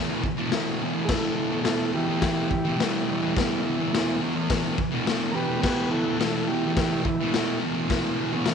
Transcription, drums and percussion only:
0.24 kick medium
0.52 snare loud
0.52 open hi-hat medium
1.09 kick loud
1.09 snare loud
1.09 crash loud
1.65 snare loud
1.65 open hi-hat medium
2.22 kick loud
2.22 snare loud
2.22 open hi-hat medium
2.51 kick medium
2.80 snare loud
2.80 open hi-hat medium
3.37 kick loud
3.37 snare loud
3.37 open hi-hat medium
3.94 snare loud
3.94 open hi-hat medium
4.50 kick loud
4.50 snare loud
4.50 open hi-hat medium
4.78 kick medium
5.07 snare loud
5.07 open hi-hat medium
5.64 kick loud
5.64 snare loud
5.64 crash loud
6.20 snare loud
6.20 open hi-hat medium
6.77 kick loud
6.77 snare loud
6.77 open hi-hat medium
7.05 kick medium
7.33 snare loud
7.33 open hi-hat medium
7.90 kick loud
7.90 snare loud
7.90 open hi-hat medium
8.45 snare loud
8.45 open hi-hat medium

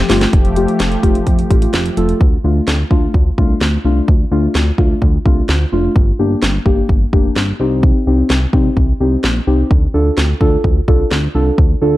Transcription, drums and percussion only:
0.10 snare loud
0.10 open hi-hat medium
0.21 snare medium
0.21 closed hi-hat medium
0.33 kick loud
0.33 closed hi-hat medium
0.45 closed hi-hat soft
0.56 closed hi-hat medium
0.68 closed hi-hat medium
0.80 snare loud
0.80 closed hi-hat medium
0.92 closed hi-hat medium
1.03 kick medium
1.03 closed hi-hat medium
1.15 closed hi-hat medium
1.27 kick medium
1.27 closed hi-hat medium
1.39 closed hi-hat soft
1.51 kick medium
1.51 closed hi-hat medium
1.62 closed hi-hat medium
1.74 snare loud
1.74 closed hi-hat medium
1.86 closed hi-hat medium
1.97 closed hi-hat medium
2.09 closed hi-hat medium
2.21 kick loud
2.68 snare loud
2.91 kick medium
3.14 kick medium
3.38 kick medium
3.61 snare loud
4.08 kick loud
4.55 snare loud
4.78 kick medium
5.02 kick medium
5.26 kick medium
5.49 snare loud
5.96 kick loud
6.43 snare loud
6.66 kick medium
6.89 kick medium
7.13 kick medium
7.36 snare loud
7.83 kick loud
8.30 snare loud
8.53 kick medium
8.77 kick medium
9.24 snare loud
9.71 kick loud
10.18 snare loud
10.41 kick medium
10.64 kick medium
10.88 kick medium
11.11 snare loud
11.58 kick loud

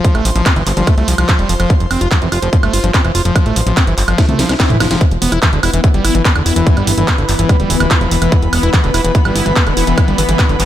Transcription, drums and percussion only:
0.04 kick loud
0.04 closed hi-hat medium
0.15 closed hi-hat soft
0.15 high woodblock soft
0.25 open hi-hat loud
0.36 closed hi-hat medium
0.46 kick loud
0.46 clap loud
0.46 closed hi-hat medium
0.46 high woodblock medium
0.56 closed hi-hat soft
0.67 clap soft
0.67 open hi-hat medium
0.77 closed hi-hat medium
0.87 kick loud
0.87 closed hi-hat medium
0.87 high woodblock soft
0.98 closed hi-hat soft
1.08 open hi-hat loud
1.18 closed hi-hat medium
1.18 high woodblock medium
1.29 kick loud
1.29 clap loud
1.29 closed hi-hat medium
1.39 closed hi-hat soft
1.49 open hi-hat medium
1.60 closed hi-hat soft
1.60 high woodblock soft
1.70 kick loud
1.70 closed hi-hat medium
1.80 closed hi-hat soft
1.91 open hi-hat loud
1.91 high woodblock medium
2.01 closed hi-hat medium
2.11 kick loud
2.11 clap loud
2.11 closed hi-hat medium
2.22 closed hi-hat soft
2.32 open hi-hat medium
2.32 high woodblock soft
2.42 closed hi-hat medium
2.53 kick loud
2.53 closed hi-hat medium
2.63 closed hi-hat soft
2.63 high woodblock medium
2.73 open hi-hat loud
2.84 closed hi-hat medium
2.94 kick loud
2.94 clap loud
2.94 closed hi-hat medium
3.05 closed hi-hat soft
3.05 high woodblock soft
3.15 open hi-hat medium
3.25 closed hi-hat medium
3.36 kick loud
3.36 closed hi-hat medium
3.36 high woodblock medium
3.46 closed hi-hat soft
3.56 open hi-hat loud
3.67 closed hi-hat medium
3.77 kick loud
3.77 clap loud
3.77 closed hi-hat medium
3.77 high woodblock soft
3.87 closed hi-hat soft
3.98 clap soft
3.98 open hi-hat medium
4.08 closed hi-hat medium
4.08 high woodblock medium
4.18 kick loud
4.18 snare medium
4.18 closed hi-hat medium
4.29 closed hi-hat soft
4.29 high tom medium
4.39 snare medium
4.39 open hi-hat loud
4.49 snare medium
4.49 closed hi-hat medium
4.49 high woodblock soft
4.60 kick loud
4.60 snare medium
4.60 clap loud
4.60 closed hi-hat medium
4.70 closed hi-hat soft
4.70 mid tom medium
4.80 snare loud
4.80 open hi-hat medium
4.80 high woodblock medium
4.91 snare medium
4.91 closed hi-hat medium
5.01 kick loud
5.01 closed hi-hat medium
5.11 closed hi-hat soft
5.22 open hi-hat loud
5.32 closed hi-hat medium
5.32 high woodblock soft
5.42 kick loud
5.42 clap loud
5.42 closed hi-hat medium
5.53 closed hi-hat soft
5.63 open hi-hat medium
5.63 high woodblock medium
5.73 closed hi-hat medium
5.84 kick loud
5.84 closed hi-hat medium
5.94 closed hi-hat soft
6.05 open hi-hat loud
6.05 high woodblock soft
6.15 closed hi-hat medium
6.25 kick loud
6.25 clap loud
6.25 closed hi-hat medium
6.36 closed hi-hat soft
6.36 high woodblock medium
6.46 open hi-hat medium
6.56 closed hi-hat medium
6.67 kick loud
6.67 closed hi-hat medium
6.77 closed hi-hat soft
6.77 high woodblock soft
6.87 open hi-hat loud
6.98 closed hi-hat medium
7.08 kick loud
7.08 clap loud
7.08 closed hi-hat medium
7.08 high woodblock medium
7.18 closed hi-hat soft
7.29 clap soft
7.29 open hi-hat loud
7.39 closed hi-hat medium
7.49 kick loud
7.49 closed hi-hat medium
7.49 high woodblock soft
7.60 closed hi-hat soft
7.70 open hi-hat loud
7.80 closed hi-hat medium
7.80 high woodblock medium
7.91 kick loud
7.91 clap loud
7.91 closed hi-hat medium
8.01 closed hi-hat soft
8.11 open hi-hat loud
8.22 closed hi-hat medium
8.22 high woodblock soft
8.32 kick loud
8.32 closed hi-hat soft
8.42 closed hi-hat soft
8.53 open hi-hat loud
8.53 high woodblock medium
8.63 closed hi-hat soft
8.73 kick loud
8.73 clap loud
8.73 closed hi-hat soft
8.84 closed hi-hat soft
8.94 open hi-hat loud
8.94 high woodblock soft
9.05 closed hi-hat soft
9.15 kick loud
9.15 closed hi-hat medium
9.25 closed hi-hat soft
9.25 high woodblock medium
9.36 open hi-hat loud
9.46 closed hi-hat medium
9.56 kick loud
9.56 clap loud
9.56 closed hi-hat medium
9.67 closed hi-hat soft
9.67 high woodblock soft
9.77 open hi-hat loud
9.87 closed hi-hat soft
9.98 kick loud
9.98 closed hi-hat soft
9.98 high woodblock medium
10.08 closed hi-hat soft
10.18 open hi-hat loud
10.29 closed hi-hat medium
10.39 kick loud
10.39 clap loud
10.39 closed hi-hat medium
10.39 high woodblock soft
10.49 closed hi-hat soft
10.60 clap soft
10.60 open hi-hat loud

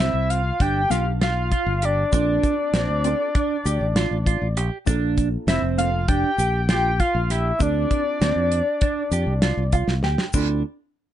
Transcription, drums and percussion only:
0.00 shaker soft
0.30 closed hi-hat medium
0.30 shaker soft
0.60 kick medium
0.60 closed hi-hat medium
0.91 snare soft
0.91 closed hi-hat medium
0.91 shaker soft
1.22 snare loud
1.22 closed hi-hat medium
1.51 kick medium
1.51 closed hi-hat medium
1.82 closed hi-hat medium
2.13 kick loud
2.13 closed hi-hat medium
2.13 shaker medium
2.43 kick medium
2.43 closed hi-hat medium
2.43 shaker soft
2.74 snare loud
2.74 closed hi-hat medium
2.74 shaker soft
3.04 closed hi-hat medium
3.04 shaker soft
3.35 kick medium
3.35 closed hi-hat medium
3.66 closed hi-hat medium
3.66 shaker soft
3.96 snare loud
3.96 closed hi-hat medium
4.26 kick medium
4.26 closed hi-hat medium
4.57 closed hi-hat medium
4.87 kick loud
4.87 closed hi-hat medium
4.87 shaker medium
5.18 kick medium
5.18 closed hi-hat medium
5.18 shaker soft
5.48 snare loud
5.48 closed hi-hat medium
5.48 shaker soft
5.78 closed hi-hat medium
5.78 shaker soft
6.08 kick loud
6.08 closed hi-hat medium
6.39 closed hi-hat soft
6.39 shaker soft
6.69 snare loud
6.69 closed hi-hat medium
7.00 kick medium
7.00 closed hi-hat medium
7.30 snare soft
7.30 closed hi-hat medium
7.60 kick loud
7.60 closed hi-hat medium
7.60 shaker soft
7.91 kick medium
7.91 closed hi-hat medium
8.22 snare loud
8.22 closed hi-hat medium
8.22 shaker soft
8.52 closed hi-hat medium
8.81 kick loud
8.81 closed hi-hat medium
9.12 closed hi-hat medium
9.12 shaker soft
9.42 snare loud
9.42 closed hi-hat medium
9.72 kick medium
9.72 closed hi-hat medium
9.72 shaker soft
9.88 snare medium
10.03 snare medium
10.18 snare medium
10.33 kick loud
10.33 crash loud
10.33 shaker medium

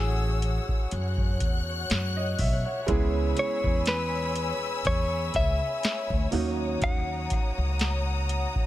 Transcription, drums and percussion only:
0.42 closed hi-hat medium
0.68 kick medium
0.91 closed hi-hat medium
1.17 kick loud
1.40 kick medium
1.40 closed hi-hat medium
1.90 snare loud
1.90 closed hi-hat medium
2.39 kick loud
2.39 open hi-hat medium
2.88 kick loud
2.88 closed hi-hat medium
3.37 closed hi-hat medium
3.64 kick loud
3.86 snare loud
3.86 closed hi-hat medium
4.36 closed hi-hat medium
4.85 kick medium
4.85 closed hi-hat medium
5.34 kick medium
5.34 closed hi-hat medium
5.83 snare loud
5.83 closed hi-hat medium
6.10 kick medium
6.32 open hi-hat medium
6.82 kick loud
6.82 closed hi-hat medium
7.30 kick loud
7.30 closed hi-hat medium
7.79 snare loud
7.79 closed hi-hat medium
8.29 closed hi-hat medium
8.55 kick medium

